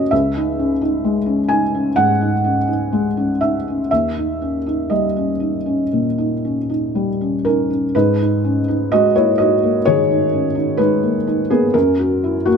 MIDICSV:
0, 0, Header, 1, 2, 480
1, 0, Start_track
1, 0, Tempo, 930233
1, 57, Time_signature, 4, 2, 24, 8
1, 1498, Tempo, 993377
1, 2458, Tempo, 1015228
1, 3898, Tempo, 952381
1, 6234, End_track
2, 0, Start_track
2, 0, Title_t, "Felt piano"
2, 0, Program_c, 0, 0
2, 0, Control_c, 0, 64, 127
2, 0, Note_on_c, 0, 49, 39
2, 0, Note_on_c, 0, 58, 42
2, 0, Note_on_c, 0, 61, 38
2, 0, Note_on_c, 0, 64, 35
2, 0, Note_on_c, 0, 66, 39
2, 0, Note_on_c, 0, 73, 81
2, 0, Note_on_c, 0, 75, 71
2, 56, Note_on_c, 0, 76, 69
2, 58, Note_off_c, 0, 75, 0
2, 63, Note_off_c, 0, 61, 0
2, 64, Control_c, 0, 64, 0
2, 64, Note_on_c, 0, 37, 49
2, 66, Note_off_c, 0, 58, 0
2, 66, Note_off_c, 0, 64, 0
2, 66, Note_off_c, 0, 73, 0
2, 67, Note_off_c, 0, 66, 0
2, 69, Note_off_c, 0, 49, 0
2, 154, Control_c, 0, 64, 127
2, 185, Note_on_c, 0, 63, 38
2, 306, Note_on_c, 0, 61, 33
2, 370, Note_off_c, 0, 63, 0
2, 418, Note_off_c, 0, 61, 0
2, 420, Note_on_c, 0, 63, 42
2, 538, Note_on_c, 0, 56, 39
2, 607, Note_off_c, 0, 63, 0
2, 650, Note_on_c, 0, 61, 37
2, 725, Note_off_c, 0, 56, 0
2, 766, Note_on_c, 0, 80, 75
2, 769, Note_off_c, 0, 76, 0
2, 773, Note_on_c, 0, 63, 41
2, 840, Note_off_c, 0, 61, 0
2, 901, Note_on_c, 0, 61, 36
2, 962, Note_off_c, 0, 63, 0
2, 990, Note_off_c, 0, 37, 0
2, 1006, Note_off_c, 0, 80, 0
2, 1011, Note_on_c, 0, 78, 82
2, 1017, Note_on_c, 0, 44, 40
2, 1086, Note_off_c, 0, 61, 0
2, 1141, Note_on_c, 0, 63, 39
2, 1206, Note_off_c, 0, 44, 0
2, 1260, Note_on_c, 0, 61, 32
2, 1331, Note_off_c, 0, 63, 0
2, 1379, Note_off_c, 0, 61, 0
2, 1380, Note_on_c, 0, 63, 38
2, 1508, Note_on_c, 0, 56, 38
2, 1572, Note_off_c, 0, 63, 0
2, 1627, Note_on_c, 0, 61, 33
2, 1693, Note_off_c, 0, 56, 0
2, 1737, Note_off_c, 0, 78, 0
2, 1742, Note_on_c, 0, 76, 60
2, 1749, Note_on_c, 0, 63, 34
2, 1812, Note_off_c, 0, 61, 0
2, 1872, Note_on_c, 0, 61, 31
2, 1934, Note_off_c, 0, 63, 0
2, 1977, Note_off_c, 0, 76, 0
2, 1984, Note_off_c, 0, 61, 0
2, 1984, Control_c, 0, 64, 0
2, 1984, Note_on_c, 0, 76, 67
2, 1988, Note_on_c, 0, 39, 40
2, 2059, Control_c, 0, 64, 127
2, 2112, Note_on_c, 0, 63, 32
2, 2229, Note_on_c, 0, 61, 28
2, 2297, Note_off_c, 0, 63, 0
2, 2344, Note_off_c, 0, 61, 0
2, 2349, Note_on_c, 0, 63, 33
2, 2461, Note_on_c, 0, 75, 52
2, 2463, Note_off_c, 0, 76, 0
2, 2466, Note_on_c, 0, 55, 33
2, 2536, Note_off_c, 0, 63, 0
2, 2588, Note_on_c, 0, 61, 29
2, 2654, Note_off_c, 0, 55, 0
2, 2699, Note_on_c, 0, 63, 30
2, 2775, Note_off_c, 0, 61, 0
2, 2821, Note_on_c, 0, 61, 31
2, 2891, Note_off_c, 0, 63, 0
2, 2927, Note_off_c, 0, 39, 0
2, 2949, Note_on_c, 0, 46, 33
2, 3013, Note_off_c, 0, 61, 0
2, 3068, Note_on_c, 0, 63, 30
2, 3137, Note_off_c, 0, 46, 0
2, 3194, Note_on_c, 0, 61, 26
2, 3257, Note_off_c, 0, 63, 0
2, 3308, Note_off_c, 0, 61, 0
2, 3311, Note_on_c, 0, 63, 34
2, 3433, Note_on_c, 0, 55, 30
2, 3498, Note_off_c, 0, 63, 0
2, 3556, Note_on_c, 0, 61, 28
2, 3620, Note_off_c, 0, 55, 0
2, 3663, Note_off_c, 0, 75, 0
2, 3666, Note_off_c, 0, 61, 0
2, 3667, Note_on_c, 0, 70, 57
2, 3673, Note_on_c, 0, 61, 42
2, 3673, Note_on_c, 0, 63, 29
2, 3781, Note_off_c, 0, 61, 0
2, 3788, Note_on_c, 0, 61, 30
2, 3858, Note_off_c, 0, 63, 0
2, 3901, Note_off_c, 0, 70, 0
2, 3902, Note_off_c, 0, 61, 0
2, 3905, Note_on_c, 0, 71, 74
2, 3907, Control_c, 0, 64, 0
2, 3910, Note_on_c, 0, 44, 47
2, 3911, Note_on_c, 0, 63, 52
2, 3989, Control_c, 0, 64, 127
2, 4030, Note_off_c, 0, 63, 0
2, 4038, Note_on_c, 0, 63, 39
2, 4155, Note_on_c, 0, 61, 33
2, 4224, Note_off_c, 0, 63, 0
2, 4270, Note_off_c, 0, 61, 0
2, 4274, Note_on_c, 0, 63, 39
2, 4388, Note_off_c, 0, 71, 0
2, 4393, Note_on_c, 0, 75, 79
2, 4399, Note_on_c, 0, 66, 61
2, 4400, Note_on_c, 0, 56, 38
2, 4462, Note_off_c, 0, 63, 0
2, 4504, Note_off_c, 0, 66, 0
2, 4509, Note_off_c, 0, 75, 0
2, 4512, Note_on_c, 0, 73, 67
2, 4513, Note_on_c, 0, 58, 36
2, 4518, Note_on_c, 0, 64, 51
2, 4584, Note_off_c, 0, 56, 0
2, 4622, Note_off_c, 0, 64, 0
2, 4626, Note_on_c, 0, 75, 72
2, 4628, Note_off_c, 0, 73, 0
2, 4634, Note_on_c, 0, 66, 55
2, 4635, Note_on_c, 0, 63, 39
2, 4699, Note_off_c, 0, 58, 0
2, 4751, Note_on_c, 0, 58, 37
2, 4819, Note_off_c, 0, 63, 0
2, 4846, Note_off_c, 0, 44, 0
2, 4849, Note_off_c, 0, 66, 0
2, 4861, Note_off_c, 0, 75, 0
2, 4865, Note_on_c, 0, 73, 83
2, 4874, Note_on_c, 0, 51, 40
2, 4874, Note_on_c, 0, 68, 63
2, 4935, Note_off_c, 0, 58, 0
2, 4993, Note_on_c, 0, 63, 41
2, 5055, Note_off_c, 0, 51, 0
2, 5101, Note_on_c, 0, 61, 34
2, 5174, Note_off_c, 0, 63, 0
2, 5214, Note_on_c, 0, 63, 42
2, 5216, Note_off_c, 0, 61, 0
2, 5320, Note_off_c, 0, 68, 0
2, 5328, Note_off_c, 0, 63, 0
2, 5329, Note_on_c, 0, 71, 75
2, 5334, Note_on_c, 0, 56, 40
2, 5335, Note_off_c, 0, 73, 0
2, 5335, Note_on_c, 0, 63, 57
2, 5458, Note_on_c, 0, 58, 38
2, 5526, Note_off_c, 0, 56, 0
2, 5572, Note_off_c, 0, 63, 0
2, 5580, Note_on_c, 0, 63, 38
2, 5650, Note_off_c, 0, 58, 0
2, 5694, Note_off_c, 0, 71, 0
2, 5697, Note_on_c, 0, 68, 72
2, 5698, Note_on_c, 0, 58, 42
2, 5701, Note_on_c, 0, 59, 53
2, 5772, Note_off_c, 0, 63, 0
2, 5812, Note_off_c, 0, 59, 0
2, 5814, Note_on_c, 0, 70, 77
2, 5818, Note_off_c, 0, 58, 0
2, 5818, Note_off_c, 0, 68, 0
2, 5820, Note_on_c, 0, 42, 48
2, 5822, Note_on_c, 0, 61, 60
2, 5826, Control_c, 0, 64, 0
2, 5907, Control_c, 0, 64, 127
2, 5944, Note_on_c, 0, 66, 42
2, 6066, Note_on_c, 0, 64, 37
2, 6133, Note_off_c, 0, 66, 0
2, 6159, Note_off_c, 0, 61, 0
2, 6176, Note_off_c, 0, 70, 0
2, 6176, Note_on_c, 0, 66, 72
2, 6181, Note_off_c, 0, 64, 0
2, 6181, Note_on_c, 0, 58, 56
2, 6234, Note_off_c, 0, 42, 0
2, 6234, Note_off_c, 0, 58, 0
2, 6234, Note_off_c, 0, 66, 0
2, 6234, End_track
0, 0, End_of_file